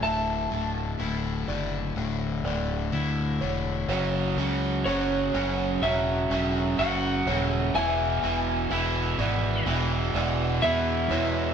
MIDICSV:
0, 0, Header, 1, 6, 480
1, 0, Start_track
1, 0, Tempo, 963082
1, 16, Time_signature, 4, 2, 24, 8
1, 5751, End_track
2, 0, Start_track
2, 0, Title_t, "Electric slide guitar"
2, 0, Program_c, 0, 29
2, 15, Note_on_c, 0, 81, 82
2, 959, Note_off_c, 0, 81, 0
2, 2420, Note_on_c, 0, 73, 70
2, 2904, Note_on_c, 0, 76, 76
2, 2916, Note_off_c, 0, 73, 0
2, 3363, Note_off_c, 0, 76, 0
2, 3384, Note_on_c, 0, 78, 87
2, 3733, Note_off_c, 0, 78, 0
2, 3733, Note_on_c, 0, 76, 87
2, 3864, Note_on_c, 0, 80, 90
2, 3877, Note_off_c, 0, 76, 0
2, 4801, Note_off_c, 0, 80, 0
2, 5294, Note_on_c, 0, 76, 79
2, 5751, Note_off_c, 0, 76, 0
2, 5751, End_track
3, 0, Start_track
3, 0, Title_t, "Felt piano"
3, 0, Program_c, 1, 0
3, 13, Note_on_c, 1, 76, 82
3, 497, Note_off_c, 1, 76, 0
3, 736, Note_on_c, 1, 74, 68
3, 1214, Note_off_c, 1, 74, 0
3, 1221, Note_on_c, 1, 74, 75
3, 1699, Note_on_c, 1, 73, 77
3, 1702, Note_off_c, 1, 74, 0
3, 1935, Note_off_c, 1, 73, 0
3, 1943, Note_on_c, 1, 73, 94
3, 2413, Note_off_c, 1, 73, 0
3, 2420, Note_on_c, 1, 73, 81
3, 2894, Note_off_c, 1, 73, 0
3, 2901, Note_on_c, 1, 73, 74
3, 3382, Note_off_c, 1, 73, 0
3, 3623, Note_on_c, 1, 73, 80
3, 3862, Note_off_c, 1, 73, 0
3, 3862, Note_on_c, 1, 76, 100
3, 4341, Note_off_c, 1, 76, 0
3, 4583, Note_on_c, 1, 74, 75
3, 5053, Note_off_c, 1, 74, 0
3, 5060, Note_on_c, 1, 74, 75
3, 5537, Note_off_c, 1, 74, 0
3, 5537, Note_on_c, 1, 73, 74
3, 5751, Note_off_c, 1, 73, 0
3, 5751, End_track
4, 0, Start_track
4, 0, Title_t, "Clean electric guitar"
4, 0, Program_c, 2, 27
4, 0, Note_on_c, 2, 45, 60
4, 0, Note_on_c, 2, 50, 55
4, 0, Note_on_c, 2, 57, 59
4, 0, Note_on_c, 2, 64, 67
4, 16, Note_on_c, 2, 38, 70
4, 257, Note_off_c, 2, 45, 0
4, 490, Note_off_c, 2, 64, 0
4, 496, Note_on_c, 2, 64, 67
4, 554, Note_off_c, 2, 57, 0
4, 736, Note_on_c, 2, 57, 59
4, 978, Note_on_c, 2, 45, 73
4, 979, Note_off_c, 2, 50, 0
4, 1218, Note_on_c, 2, 50, 65
4, 1220, Note_off_c, 2, 38, 0
4, 1454, Note_off_c, 2, 64, 0
4, 1460, Note_on_c, 2, 64, 75
4, 1695, Note_off_c, 2, 50, 0
4, 1701, Note_on_c, 2, 50, 63
4, 1940, Note_off_c, 2, 57, 0
4, 1941, Note_off_c, 2, 45, 0
4, 1942, Note_off_c, 2, 50, 0
4, 1942, Note_off_c, 2, 64, 0
4, 1942, Note_on_c, 2, 42, 65
4, 2422, Note_on_c, 2, 66, 69
4, 2663, Note_on_c, 2, 61, 58
4, 2901, Note_on_c, 2, 54, 78
4, 3142, Note_off_c, 2, 42, 0
4, 3142, Note_on_c, 2, 57, 63
4, 3378, Note_off_c, 2, 66, 0
4, 3384, Note_on_c, 2, 66, 78
4, 3617, Note_off_c, 2, 57, 0
4, 3623, Note_on_c, 2, 57, 71
4, 3861, Note_off_c, 2, 54, 0
4, 3862, Note_off_c, 2, 57, 0
4, 3862, Note_off_c, 2, 61, 0
4, 3863, Note_off_c, 2, 66, 0
4, 3863, Note_on_c, 2, 40, 72
4, 4342, Note_on_c, 2, 64, 82
4, 4581, Note_on_c, 2, 59, 68
4, 4819, Note_on_c, 2, 52, 74
4, 5059, Note_off_c, 2, 40, 0
4, 5059, Note_on_c, 2, 56, 66
4, 5290, Note_off_c, 2, 64, 0
4, 5296, Note_on_c, 2, 64, 90
4, 5530, Note_off_c, 2, 56, 0
4, 5536, Note_on_c, 2, 56, 70
4, 5751, Note_off_c, 2, 52, 0
4, 5751, Note_off_c, 2, 56, 0
4, 5751, Note_off_c, 2, 59, 0
4, 5751, Note_off_c, 2, 64, 0
4, 5751, End_track
5, 0, Start_track
5, 0, Title_t, "Overdriven electric guitar"
5, 0, Program_c, 3, 29
5, 11, Note_on_c, 3, 38, 77
5, 13, Note_on_c, 3, 45, 100
5, 17, Note_on_c, 3, 50, 97
5, 244, Note_off_c, 3, 38, 0
5, 249, Note_off_c, 3, 45, 0
5, 250, Note_on_c, 3, 38, 75
5, 251, Note_off_c, 3, 50, 0
5, 255, Note_on_c, 3, 45, 71
5, 257, Note_on_c, 3, 50, 69
5, 487, Note_off_c, 3, 38, 0
5, 491, Note_off_c, 3, 45, 0
5, 492, Note_off_c, 3, 50, 0
5, 493, Note_on_c, 3, 38, 89
5, 497, Note_on_c, 3, 45, 88
5, 498, Note_on_c, 3, 50, 107
5, 730, Note_off_c, 3, 38, 0
5, 733, Note_off_c, 3, 45, 0
5, 734, Note_off_c, 3, 50, 0
5, 736, Note_on_c, 3, 38, 63
5, 739, Note_on_c, 3, 45, 77
5, 740, Note_on_c, 3, 50, 74
5, 970, Note_off_c, 3, 38, 0
5, 972, Note_off_c, 3, 45, 0
5, 976, Note_off_c, 3, 50, 0
5, 976, Note_on_c, 3, 38, 75
5, 978, Note_on_c, 3, 45, 67
5, 982, Note_on_c, 3, 50, 74
5, 1214, Note_off_c, 3, 38, 0
5, 1216, Note_off_c, 3, 45, 0
5, 1218, Note_off_c, 3, 50, 0
5, 1220, Note_on_c, 3, 38, 66
5, 1222, Note_on_c, 3, 45, 84
5, 1224, Note_on_c, 3, 50, 78
5, 1450, Note_off_c, 3, 38, 0
5, 1451, Note_off_c, 3, 45, 0
5, 1453, Note_off_c, 3, 50, 0
5, 1456, Note_on_c, 3, 38, 82
5, 1457, Note_on_c, 3, 45, 92
5, 1459, Note_on_c, 3, 50, 101
5, 1691, Note_off_c, 3, 38, 0
5, 1695, Note_off_c, 3, 45, 0
5, 1697, Note_on_c, 3, 38, 66
5, 1698, Note_off_c, 3, 50, 0
5, 1701, Note_on_c, 3, 45, 82
5, 1704, Note_on_c, 3, 50, 84
5, 1925, Note_off_c, 3, 38, 0
5, 1927, Note_off_c, 3, 45, 0
5, 1928, Note_off_c, 3, 50, 0
5, 1936, Note_on_c, 3, 42, 95
5, 1938, Note_on_c, 3, 49, 108
5, 1940, Note_on_c, 3, 54, 109
5, 2174, Note_off_c, 3, 42, 0
5, 2177, Note_off_c, 3, 49, 0
5, 2178, Note_off_c, 3, 54, 0
5, 2180, Note_on_c, 3, 42, 73
5, 2183, Note_on_c, 3, 49, 74
5, 2184, Note_on_c, 3, 54, 73
5, 2416, Note_off_c, 3, 42, 0
5, 2418, Note_off_c, 3, 49, 0
5, 2420, Note_off_c, 3, 54, 0
5, 2422, Note_on_c, 3, 42, 90
5, 2424, Note_on_c, 3, 49, 104
5, 2426, Note_on_c, 3, 54, 106
5, 2655, Note_off_c, 3, 42, 0
5, 2658, Note_off_c, 3, 49, 0
5, 2659, Note_off_c, 3, 54, 0
5, 2661, Note_on_c, 3, 42, 75
5, 2664, Note_on_c, 3, 49, 87
5, 2665, Note_on_c, 3, 54, 82
5, 2894, Note_off_c, 3, 42, 0
5, 2899, Note_off_c, 3, 49, 0
5, 2900, Note_on_c, 3, 42, 75
5, 2901, Note_off_c, 3, 54, 0
5, 2905, Note_on_c, 3, 49, 70
5, 2907, Note_on_c, 3, 54, 93
5, 3135, Note_off_c, 3, 42, 0
5, 3138, Note_off_c, 3, 49, 0
5, 3140, Note_off_c, 3, 54, 0
5, 3141, Note_on_c, 3, 42, 80
5, 3144, Note_on_c, 3, 49, 82
5, 3146, Note_on_c, 3, 54, 88
5, 3374, Note_off_c, 3, 42, 0
5, 3377, Note_off_c, 3, 49, 0
5, 3380, Note_off_c, 3, 54, 0
5, 3380, Note_on_c, 3, 42, 88
5, 3383, Note_on_c, 3, 49, 92
5, 3386, Note_on_c, 3, 54, 103
5, 3614, Note_off_c, 3, 42, 0
5, 3618, Note_off_c, 3, 49, 0
5, 3620, Note_on_c, 3, 42, 83
5, 3621, Note_off_c, 3, 54, 0
5, 3624, Note_on_c, 3, 49, 81
5, 3627, Note_on_c, 3, 54, 96
5, 3846, Note_off_c, 3, 42, 0
5, 3848, Note_off_c, 3, 49, 0
5, 3850, Note_off_c, 3, 54, 0
5, 3861, Note_on_c, 3, 40, 100
5, 3864, Note_on_c, 3, 47, 103
5, 3866, Note_on_c, 3, 52, 107
5, 4096, Note_off_c, 3, 40, 0
5, 4099, Note_off_c, 3, 47, 0
5, 4100, Note_off_c, 3, 52, 0
5, 4101, Note_on_c, 3, 40, 74
5, 4105, Note_on_c, 3, 47, 76
5, 4106, Note_on_c, 3, 52, 79
5, 4333, Note_off_c, 3, 40, 0
5, 4335, Note_off_c, 3, 47, 0
5, 4338, Note_off_c, 3, 52, 0
5, 4339, Note_on_c, 3, 40, 88
5, 4341, Note_on_c, 3, 47, 95
5, 4344, Note_on_c, 3, 52, 108
5, 4569, Note_off_c, 3, 40, 0
5, 4572, Note_off_c, 3, 47, 0
5, 4575, Note_off_c, 3, 52, 0
5, 4575, Note_on_c, 3, 40, 79
5, 4578, Note_on_c, 3, 47, 81
5, 4581, Note_on_c, 3, 52, 90
5, 4810, Note_off_c, 3, 40, 0
5, 4813, Note_off_c, 3, 47, 0
5, 4816, Note_on_c, 3, 40, 79
5, 4817, Note_off_c, 3, 52, 0
5, 4819, Note_on_c, 3, 47, 91
5, 4823, Note_on_c, 3, 52, 100
5, 5053, Note_off_c, 3, 40, 0
5, 5056, Note_off_c, 3, 47, 0
5, 5058, Note_off_c, 3, 52, 0
5, 5059, Note_on_c, 3, 40, 85
5, 5062, Note_on_c, 3, 47, 84
5, 5064, Note_on_c, 3, 52, 98
5, 5290, Note_off_c, 3, 40, 0
5, 5293, Note_off_c, 3, 47, 0
5, 5295, Note_off_c, 3, 52, 0
5, 5295, Note_on_c, 3, 40, 89
5, 5299, Note_on_c, 3, 47, 102
5, 5301, Note_on_c, 3, 52, 100
5, 5530, Note_off_c, 3, 40, 0
5, 5531, Note_off_c, 3, 47, 0
5, 5535, Note_off_c, 3, 52, 0
5, 5536, Note_on_c, 3, 40, 88
5, 5537, Note_on_c, 3, 47, 97
5, 5541, Note_on_c, 3, 52, 103
5, 5751, Note_off_c, 3, 40, 0
5, 5751, Note_off_c, 3, 47, 0
5, 5751, Note_off_c, 3, 52, 0
5, 5751, End_track
6, 0, Start_track
6, 0, Title_t, "Fingered electric bass"
6, 0, Program_c, 4, 33
6, 16, Note_on_c, 4, 26, 82
6, 248, Note_off_c, 4, 26, 0
6, 256, Note_on_c, 4, 26, 75
6, 488, Note_off_c, 4, 26, 0
6, 496, Note_on_c, 4, 26, 83
6, 729, Note_off_c, 4, 26, 0
6, 737, Note_on_c, 4, 30, 77
6, 970, Note_off_c, 4, 30, 0
6, 977, Note_on_c, 4, 26, 85
6, 1210, Note_off_c, 4, 26, 0
6, 1215, Note_on_c, 4, 26, 91
6, 1449, Note_off_c, 4, 26, 0
6, 1456, Note_on_c, 4, 38, 77
6, 1690, Note_off_c, 4, 38, 0
6, 1698, Note_on_c, 4, 28, 75
6, 1931, Note_off_c, 4, 28, 0
6, 1936, Note_on_c, 4, 30, 94
6, 2170, Note_off_c, 4, 30, 0
6, 2176, Note_on_c, 4, 37, 80
6, 2410, Note_off_c, 4, 37, 0
6, 2419, Note_on_c, 4, 30, 88
6, 2652, Note_off_c, 4, 30, 0
6, 2661, Note_on_c, 4, 30, 77
6, 2893, Note_off_c, 4, 30, 0
6, 2901, Note_on_c, 4, 28, 95
6, 3132, Note_off_c, 4, 28, 0
6, 3144, Note_on_c, 4, 28, 90
6, 3374, Note_off_c, 4, 28, 0
6, 3385, Note_on_c, 4, 30, 83
6, 3614, Note_off_c, 4, 30, 0
6, 3621, Note_on_c, 4, 27, 88
6, 3852, Note_off_c, 4, 27, 0
6, 3862, Note_on_c, 4, 28, 93
6, 4092, Note_off_c, 4, 28, 0
6, 4100, Note_on_c, 4, 28, 72
6, 4331, Note_off_c, 4, 28, 0
6, 4338, Note_on_c, 4, 28, 85
6, 4570, Note_off_c, 4, 28, 0
6, 4576, Note_on_c, 4, 32, 93
6, 4808, Note_off_c, 4, 32, 0
6, 4816, Note_on_c, 4, 28, 103
6, 5047, Note_off_c, 4, 28, 0
6, 5056, Note_on_c, 4, 28, 102
6, 5287, Note_off_c, 4, 28, 0
6, 5295, Note_on_c, 4, 40, 87
6, 5526, Note_off_c, 4, 40, 0
6, 5535, Note_on_c, 4, 40, 101
6, 5751, Note_off_c, 4, 40, 0
6, 5751, End_track
0, 0, End_of_file